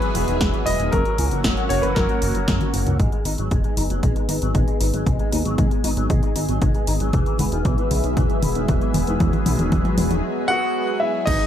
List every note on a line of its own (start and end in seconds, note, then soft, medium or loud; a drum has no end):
0.00 0.12 E3 medium
0.00 0.91 F#3 medium
0.00 0.91 G#3 medium
0.00 0.91 B3 medium
0.00 0.91 G#4 medium
0.00 0.68 B4 medium
0.00 0.91 E5 medium
0.00 closed hi-hat soft
0.15 0.26 E1 medium
0.15 0.21 B3 medium
0.15 open hi-hat loud
0.28 0.39 E1 medium
0.28 0.37 D#3 medium
0.28 closed hi-hat medium
0.41 0.52 E1 loud
0.41 0.50 E3 medium
0.41 kick loud
0.41 snare loud
0.41 closed hi-hat medium
0.54 0.63 E3 medium
0.54 closed hi-hat soft
0.66 0.78 E1 medium
0.66 0.72 B3 medium
0.66 0.90 D#5 loud
0.66 open hi-hat loud
0.80 0.91 E1 medium
0.80 0.89 D#3 medium
0.80 closed hi-hat medium
0.92 1.04 F#1 loud
0.92 1.02 F#3 medium
0.92 2.97 A#3 medium
0.92 2.97 C#4 medium
0.92 2.97 F#4 medium
0.92 1.40 A#4 medium
0.92 kick loud
0.92 closed hi-hat medium
1.05 1.15 F#3 medium
1.05 closed hi-hat soft
1.18 1.30 C#2 medium
1.18 1.24 C#4 medium
1.18 open hi-hat loud
1.31 1.43 F#1 medium
1.31 1.41 E3 medium
1.31 closed hi-hat medium
1.44 1.56 F#1 loud
1.44 1.54 F#3 medium
1.44 kick loud
1.44 snare loud
1.44 closed hi-hat medium
1.57 1.67 F#3 medium
1.57 closed hi-hat soft
1.69 1.82 F#1 medium
1.69 1.76 C#4 medium
1.69 1.83 C#5 loud
1.69 open hi-hat loud
1.82 1.94 F#1 medium
1.82 1.93 E3 medium
1.82 1.95 B4 medium
1.82 closed hi-hat medium
1.95 2.07 F#1 loud
1.95 2.06 F#3 medium
1.95 2.69 A#4 medium
1.95 kick loud
1.95 snare medium
1.95 closed hi-hat medium
2.09 2.19 F#3 medium
2.09 closed hi-hat soft
2.22 2.33 F#1 medium
2.22 2.34 E3 medium
2.22 open hi-hat loud
2.35 2.46 F#1 medium
2.35 2.41 F#3 medium
2.35 closed hi-hat medium
2.48 2.59 F#1 loud
2.48 2.54 F#3 medium
2.48 kick loud
2.48 snare loud
2.48 closed hi-hat medium
2.48 high tom medium
2.61 2.67 F#3 medium
2.61 closed hi-hat soft
2.61 high tom medium
2.74 2.85 F#1 medium
2.74 2.83 A#3 medium
2.74 open hi-hat loud
2.87 2.98 C#2 medium
2.87 2.96 E3 medium
2.87 closed hi-hat medium
2.87 mid tom medium
3.00 3.11 G#1 loud
3.00 3.09 G#3 medium
3.00 7.09 B3 medium
3.00 7.09 D#4 medium
3.00 11.23 G#4 medium
3.00 kick loud
3.00 closed hi-hat medium
3.00 mid tom soft
3.12 3.22 G#3 medium
3.12 closed hi-hat soft
3.25 3.37 G#1 medium
3.25 3.31 D#4 medium
3.25 open hi-hat loud
3.38 3.50 G#1 medium
3.38 3.48 F#3 medium
3.38 closed hi-hat medium
3.51 3.63 F#1 loud
3.51 3.61 G#3 medium
3.51 kick loud
3.51 closed hi-hat medium
3.51 mid tom soft
3.64 3.74 G#3 medium
3.64 closed hi-hat soft
3.77 3.88 F#1 medium
3.77 3.83 D#4 medium
3.77 open hi-hat loud
3.90 4.01 F#1 medium
3.90 4.00 F#3 medium
3.90 closed hi-hat medium
4.03 4.14 G#1 loud
4.03 4.12 G#3 medium
4.03 kick loud
4.03 closed hi-hat medium
4.03 mid tom medium
4.16 4.25 G#3 medium
4.16 closed hi-hat soft
4.29 4.40 G#1 medium
4.29 4.35 D#4 medium
4.29 open hi-hat loud
4.42 4.53 G#1 medium
4.42 4.51 F#3 medium
4.42 closed hi-hat medium
4.55 4.66 G#1 loud
4.55 4.64 G#3 medium
4.55 kick loud
4.55 closed hi-hat medium
4.55 mid tom medium
4.67 4.77 G#3 medium
4.67 closed hi-hat soft
4.80 4.92 G#1 medium
4.80 4.86 D#4 medium
4.80 open hi-hat loud
4.93 5.05 G#1 medium
4.93 5.03 F#3 medium
4.93 closed hi-hat medium
5.06 5.18 G#1 loud
5.06 5.16 G#3 medium
5.06 kick loud
5.06 closed hi-hat soft
5.06 mid tom medium
5.19 5.29 G#3 medium
5.19 closed hi-hat soft
5.32 5.44 D#2 medium
5.32 5.38 D#4 medium
5.32 open hi-hat loud
5.45 5.57 G#1 medium
5.45 5.55 F#3 medium
5.45 closed hi-hat medium
5.58 5.70 G#1 loud
5.58 5.68 G#3 medium
5.58 kick loud
5.58 closed hi-hat medium
5.58 mid tom medium
5.71 5.81 G#3 medium
5.71 closed hi-hat soft
5.84 5.95 G#1 medium
5.84 5.90 D#4 medium
5.84 open hi-hat loud
5.97 6.08 G#1 medium
5.97 6.06 F#3 medium
5.97 closed hi-hat soft
6.10 6.21 G#1 loud
6.10 6.19 G#3 medium
6.10 kick loud
6.10 closed hi-hat medium
6.10 mid tom medium
6.23 6.32 G#3 medium
6.23 closed hi-hat soft
6.36 6.47 G#1 medium
6.36 6.41 D#4 medium
6.36 open hi-hat loud
6.49 6.60 G#1 medium
6.49 6.58 F#3 medium
6.49 closed hi-hat medium
6.62 6.73 G#1 loud
6.62 6.71 G#3 medium
6.62 kick loud
6.62 closed hi-hat medium
6.62 mid tom medium
6.75 6.84 G#3 medium
6.75 closed hi-hat soft
6.87 6.99 G#1 medium
6.87 6.93 D#4 medium
6.87 open hi-hat loud
7.00 7.12 G#1 medium
7.00 7.10 F#3 medium
7.00 closed hi-hat medium
7.13 7.25 E1 loud
7.13 7.23 E3 medium
7.13 11.23 F#3 medium
7.13 11.23 G#3 medium
7.13 11.23 B3 medium
7.13 11.23 E5 medium
7.13 kick loud
7.13 closed hi-hat soft
7.13 mid tom medium
7.26 7.36 E3 medium
7.26 closed hi-hat soft
7.39 7.50 E1 medium
7.39 7.45 B3 medium
7.39 open hi-hat loud
7.39 mid tom medium
7.52 7.64 E1 medium
7.52 7.62 D#3 medium
7.52 closed hi-hat medium
7.65 7.76 B1 loud
7.65 7.75 E3 medium
7.65 kick loud
7.65 closed hi-hat soft
7.65 mid tom medium
7.78 7.88 E3 medium
7.78 closed hi-hat soft
7.91 8.02 B1 medium
7.91 7.97 B3 medium
7.91 open hi-hat loud
7.91 mid tom medium
8.04 8.15 B1 medium
8.04 8.13 D#3 medium
8.04 closed hi-hat medium
8.17 8.28 E1 loud
8.17 8.26 E3 medium
8.17 kick loud
8.17 closed hi-hat medium
8.17 mid tom medium
8.30 8.39 E3 medium
8.30 closed hi-hat soft
8.43 8.54 E1 medium
8.43 8.48 B3 medium
8.43 open hi-hat loud
8.43 mid tom medium
8.55 8.67 E1 medium
8.55 8.65 D#3 medium
8.55 closed hi-hat medium
8.68 8.80 E1 loud
8.68 8.78 E3 medium
8.68 kick loud
8.68 closed hi-hat medium
8.68 mid tom medium
8.81 8.91 E3 medium
8.81 closed hi-hat soft
8.94 9.06 E1 loud
8.94 9.00 B3 medium
8.94 open hi-hat loud
8.94 mid tom medium
9.07 9.19 E1 medium
9.07 9.17 D#3 medium
9.07 closed hi-hat medium
9.20 9.32 E1 loud
9.20 9.30 E3 medium
9.20 kick loud
9.20 closed hi-hat soft
9.20 mid tom medium
9.33 9.43 E3 medium
9.33 closed hi-hat soft
9.33 mid tom medium
9.46 9.57 B1 medium
9.46 9.52 B3 medium
9.46 open hi-hat loud
9.46 mid tom medium
9.59 9.70 E1 medium
9.59 9.68 D#3 medium
9.59 closed hi-hat soft
9.59 mid tom medium
9.72 9.83 E1 loud
9.72 9.81 E3 medium
9.72 kick loud
9.72 closed hi-hat medium
9.72 mid tom medium
9.85 9.94 E3 medium
9.85 closed hi-hat soft
9.85 mid tom medium
9.98 10.09 E1 medium
9.98 10.03 B3 medium
9.98 open hi-hat loud
9.98 mid tom loud
10.11 10.22 E1 medium
10.11 10.20 D#3 medium
10.11 closed hi-hat soft
10.11 mid tom medium
10.48 10.98 F#4 medium
10.48 10.97 F#5 loud
11.00 11.26 E4 medium
11.00 11.27 E5 loud
11.26 11.38 G#1 loud
11.26 11.37 G#3 medium
11.26 11.47 G#3 medium
11.26 11.47 B3 medium
11.26 11.47 D#4 medium
11.26 11.47 D#5 loud
11.26 kick loud
11.26 closed hi-hat medium
11.26 crash loud
11.40 11.47 G#3 medium
11.40 closed hi-hat soft